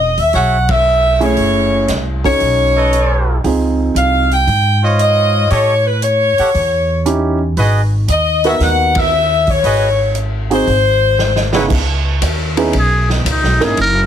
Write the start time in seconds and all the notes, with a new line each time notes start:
Already playing: E1 D#5
0.17 D#2 E5, open hi-hat
0.33 B1 F#4 G#4 C#5 E5 F#5, open hi-hat
0.69 E5, kick, ride
1.20 A3 C#4 E4 G#4 C#5, open hi-hat
1.37 F#1, open hi-hat
1.88 C2, snare, closed hi-hat
2.24 C#4 D#4 F#4 A4 C#5, kick, open hi-hat
2.40 B1, open hi-hat
2.76 A4 B4 C#5 D#5
2.93 closed hi-hat
3.44 C#2 C4 D#4 F4 G#4, open hi-hat
3.95 C2 F5, closed hi-hat
4.31 G5, open hi-hat
4.47 G#2, open hi-hat
4.83 F4 C5 C#5 D#5
4.99 D#5, closed hi-hat
5.50 A2 G4 A4 C#5 D#5, open hi-hat
5.86 B4
6.02 C#5, closed hi-hat
6.38 G4 A4 C#5 F#5, muted upright bass stroke, open hi-hat
6.54 E2, open hi-hat
7.06 C#4 D#4 E4 G4, closed hi-hat
7.57 G#1 F#4 G#4 B4 D#5, open hi-hat
8.08 D#2 D#5, closed hi-hat
8.44 B3 D#4 F#4 G#4 A#4 B4 E5 F#5, open hi-hat
8.60 D#2 F#5, snare, open hi-hat
8.95 E5, kick, ride
9.47 C#5, kick, open hi-hat
9.63 G#1 F#4 G#4 B4 D#5, open hi-hat
10.15 closed hi-hat
10.50 C4 D#4 F#4 G#4 C5, open hi-hat
10.67 G#1, open hi-hat
11.19 snare
11.36 snare
11.53 C#3 B3 D#4 E4 G#4 B4 C#5 F#5, snare
11.70 C#2, kick, crash
12.22 D#2, hi-hat pedal, ride
12.57 B3 C#4 D#4 E4 G#4, ride
12.73 B1, ride
12.79 G#4
13.10 B3, snare
13.24 C#2, hi-hat pedal, ride
13.30 D#4
13.43 B1, snare
13.60 G#1 A#3 C#4 D#4 E4 A#4, snare, ride
13.65 G#4
13.77 F#1, ride
13.81 A#4